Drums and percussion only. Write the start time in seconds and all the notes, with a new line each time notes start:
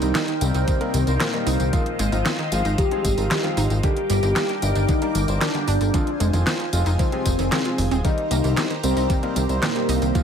0.02 closed hi-hat, tambourine
0.15 snare, clap, closed hi-hat, tambourine
0.28 closed hi-hat
0.41 closed hi-hat, tambourine
0.54 closed hi-hat, tambourine
0.68 kick, closed hi-hat, tambourine
0.81 closed hi-hat
0.94 closed hi-hat, tambourine
1.07 closed hi-hat, tambourine
1.20 snare, clap, closed hi-hat, tambourine
1.33 closed hi-hat
1.47 open hi-hat, tambourine
1.60 closed hi-hat, tambourine
1.73 kick, closed hi-hat, tambourine
1.86 closed hi-hat
1.99 closed hi-hat, tambourine
2.12 closed hi-hat, tambourine
2.26 snare, clap, closed hi-hat, tambourine
2.39 closed hi-hat
2.52 closed hi-hat, tambourine
2.65 closed hi-hat, tambourine
2.78 kick, closed hi-hat, tambourine
2.91 closed hi-hat
3.05 kick, closed hi-hat, tambourine
3.18 closed hi-hat, tambourine
3.31 snare, clap, closed hi-hat, tambourine
3.44 closed hi-hat
3.57 open hi-hat, tambourine
3.70 closed hi-hat, tambourine
3.83 kick, closed hi-hat, tambourine
3.97 closed hi-hat
4.10 closed hi-hat, tambourine
4.23 closed hi-hat, tambourine
4.36 snare, clap, closed hi-hat, tambourine
4.49 closed hi-hat
4.62 closed hi-hat, tambourine
4.75 closed hi-hat, tambourine
4.89 kick, closed hi-hat, tambourine
5.02 closed hi-hat
5.15 closed hi-hat, tambourine
5.28 closed hi-hat, tambourine
5.41 snare, clap, closed hi-hat, tambourine
5.54 closed hi-hat
5.68 open hi-hat, tambourine
5.81 closed hi-hat, tambourine
5.94 kick, closed hi-hat, tambourine
6.07 closed hi-hat
6.20 closed hi-hat, tambourine
6.33 closed hi-hat, tambourine
6.47 snare, clap, closed hi-hat, tambourine
6.60 closed hi-hat
6.73 closed hi-hat, tambourine
6.86 closed hi-hat, tambourine
6.99 kick, closed hi-hat, tambourine
7.12 closed hi-hat
7.26 kick, closed hi-hat, tambourine
7.39 closed hi-hat, tambourine
7.52 snare, clap, closed hi-hat, tambourine
7.65 closed hi-hat
7.78 open hi-hat, tambourine
7.91 closed hi-hat, tambourine
8.05 kick, closed hi-hat, tambourine
8.18 closed hi-hat
8.31 closed hi-hat, tambourine
8.44 closed hi-hat, tambourine
8.57 snare, clap, closed hi-hat, tambourine
8.70 closed hi-hat
8.84 closed hi-hat, tambourine
8.97 closed hi-hat, tambourine
9.10 kick, closed hi-hat, tambourine
9.23 closed hi-hat
9.36 closed hi-hat, tambourine
9.49 closed hi-hat, tambourine
9.63 snare, clap, closed hi-hat, tambourine
9.76 closed hi-hat
9.89 open hi-hat, tambourine
10.02 closed hi-hat, tambourine
10.15 kick, closed hi-hat, tambourine